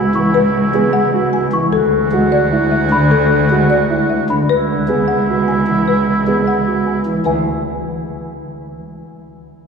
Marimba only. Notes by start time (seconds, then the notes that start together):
Already playing: G#5
0.34 B4
0.93 F#5
1.33 G#5
1.73 A4
2.32 D5
2.71 E5
3.11 A4
3.70 D5
4.10 E5
4.49 B4
5.08 F#5
5.48 G#5
5.88 B4
6.47 F#5
6.87 G#5
7.25 B4